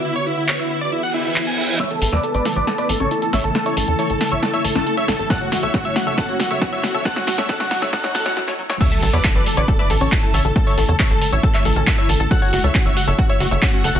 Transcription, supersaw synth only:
X:1
M:4/4
L:1/16
Q:1/4=137
K:A
V:1 name="Supersaw synth"
E c E E c E E d E f E E E g E E | c A A [Bd] A [Bd] A [Bd] A [Bd] A [Ac] A A [ce] A | A [Ac] A A [Ac] A A [ce] A [ce] A A A [ce] A A | [Af] F F [ce] F [ce] F [ce] [Af] F F [ce] F [ce] F [ce] |
[Af] F F [ce] [Af] F F [ce] [Af] F [Af] F z4 | [ce] A A [Bd] A [Bd] A [Bd] A [Bd] A [Ac] A A [ce] A | A [Ac] A A [Ac] A A [ce] A [ce] A A A [ce] A A | [Af] F F [ce] F [ce] F [ce] F [ce] F [ce] F F [Af] F |]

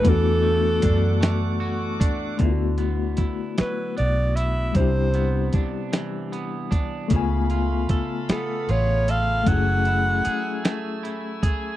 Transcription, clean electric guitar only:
X:1
M:6/8
L:1/8
Q:3/8=51
K:Dlyd
V:1 name="Clean electric guitar"
E, A, D A, F D | D, B, E F, B, E | =C, B, D E, B, D | C, ^E A B, E A |
F, E G A, E G |]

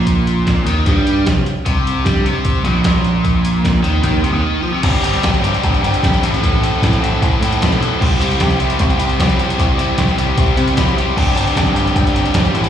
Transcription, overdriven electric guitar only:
X:1
M:4/4
L:1/16
Q:1/4=152
K:C
V:1 name="Overdriven electric guitar"
_B,,6 _E,2 G,4 C,2 z2 | C,4 G,2 C,4 _B,,6- | _B,,6 _E,2 E,2 C, E,3 F, C, | [G,,D,G,CDG]2 [G,,D,G,CDG]2 [G,,D,G,CDG]2 [G,,D,G,CDG]2 [G,,D,G,CDG]2 [G,,D,G,CDG]2 [G,,D,G,CDG]2 [A,,E,CEA]2 |
[A,,E,CEA]2 [A,,E,CEA]2 [A,,E,CEA]2 [A,,E,CEA]2 [A,,E,CEA]2 [A,,E,CEA]2 [A,,E,CEA]2 [A,,E,CEA]2 | [C,G,CEG]2 [C,G,CEG]2 [C,G,CEG]2 [C,G,CEG]2 [C,G,CEG]2 [C,G,CEG]2 [C,G,CEG]2 [C,G,CEG]2 | [C,G,CEG]2 [C,G,CEG]2 [C,G,CEG]2 [C,G,CEG]2 [C,G,CEG]2 [C,G,CEG]2 [C,G,CEG]2 [C,G,CEG]2 | [G,,D,G,CDG]2 [G,,D,G,CDG]2 [G,,D,G,CDG]2 [G,,D,G,CDG]2 [G,,D,G,CDG]2 [G,,D,G,CDG]2 [G,,D,G,CDG]2 [A,,E,CEA]2 |]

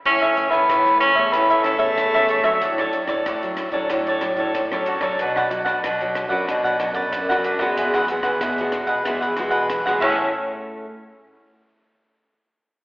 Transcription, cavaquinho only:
X:1
M:4/4
L:1/16
Q:1/4=93
K:A
V:1 name="Cavaquinho"
[EAce] [Ace] z [Ace] [EAce]3 [Ace] [EAce] [Ace] z [Ace]2 [Ace] [EAce] [Ace] | [FAcd] [Acd] z [Acd] [FAcd]3 [Acd] [FAcd] [Acd] z [Acd]2 [Acd] [FAcd] [Acd] | [DBdf] [Bdf] z [Bdf] [DBdf]3 [Bdf] [DBdf] [Bdf] z [Bdf]2 [Bdf] [DBdf] [Bdf] | [EGBf] [GBf] z [GBf] [EGBf]3 [GBf] [EGBf] [GBf] z [GBf]2 [GBf] [EAce]2 |
z16 |]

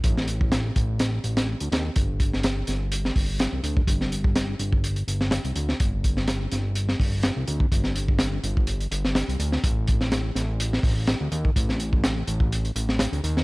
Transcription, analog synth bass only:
X:1
M:4/4
L:1/16
Q:"Swing 16ths" 1/4=125
K:Cdor
V:1 name="Analog synth bass" clef=bass
A,,,6 A,,,4 A,,,3 D,, E,,2 | G,,,6 G,,,4 G,,,3 C,, D,,2 | G,,,6 G,,,4 G,,,3 C,, D,,2 | G,,,6 G,,,4 G,,,3 C,, D,,2 |
G,,,6 G,,,4 G,,,3 C,, D,,2 | A,,,6 A,,,4 A,,,3 D,, E,,2 | A,,,6 A,,,4 A,,,3 D,, E,,2 |]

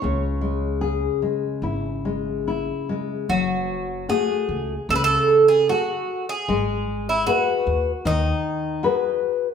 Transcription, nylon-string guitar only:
X:1
M:4/4
L:1/8
Q:1/4=76
K:C#m
V:1 name="Nylon-string guitar"
C, G, G G, E G, E G, | [K:F#dor] F,2 [A,FG]2 C,2 [FGA]2 | G,2 [FGB]2 D,2 [FGB]2 |]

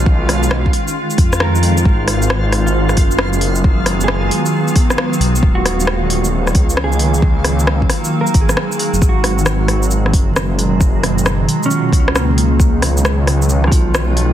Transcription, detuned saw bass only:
X:1
M:4/4
L:1/16
Q:"Swing 16ths" 1/4=134
K:G#dor
V:1 name="Detuned saw bass" clef=bass
B,,,6 z4 E,,6 | G,,,8- G,,,2 F,,,6- | F,,,6 z8 B,,,2 | D,,,8- D,,,2 C,,6- |
C,,6 z4 G,,,2 z3 F,,, | G,,,8- G,,,2 F,,,6- | F,,,6 z4 C,,6 | C,,8- C,,2 B,,,6 |]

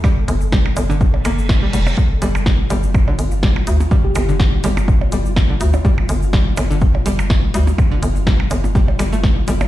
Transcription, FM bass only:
X:1
M:4/4
L:1/8
Q:"Swing 16ths" 1/4=124
K:Cmix
V:1 name="FM bass" clef=bass
z G,,, z G,,, z G,,, z F,,, | z G,,, z G,,, z G,,, z D,, | z G,,, z G,,, z G,,, z D,, | z G,,, z G,,, z G,,, z D,, |
z G,,, z G,,, z G,,, z G,,, |]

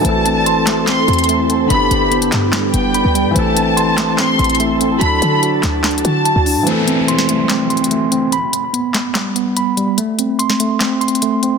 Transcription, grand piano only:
X:1
M:4/4
L:1/8
Q:1/4=145
K:Ador
V:1 name="Grand piano"
[E,CA]8 | [D,B,G]8 | [E,CA]8 | [F,DA]8 |
[E,CA]8 | z8 | z8 |]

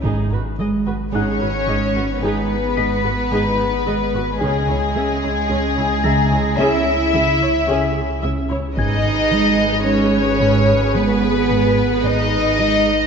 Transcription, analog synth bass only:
X:1
M:4/4
L:1/8
Q:1/4=55
K:G#m
V:1 name="Analog synth bass" clef=bass
G,, G, G, G,, G, G,, G,, G, | C, C C C, C C, C, C | G,, G, G, G,, G, G,, G,, G, |]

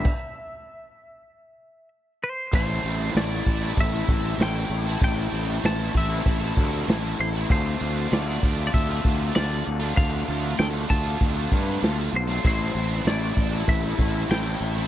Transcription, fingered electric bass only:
X:1
M:4/4
L:1/8
Q:1/4=97
K:Aphr
V:1 name="Fingered electric bass" clef=bass
z8 | A,,, A,,, A,,, A,,, A,,, A,,, A,,, A,,, | A,,, A,,, A,,, A,,, A,,, D,, A,,, A,,, | D,, D,, D,, D,, D,, D,, D,, D,, |
D,, D,, D,, D,, D,, G,, D,, =B,,, | A,,, A,,, A,,, A,,, A,,, A,,, A,,, A,,, |]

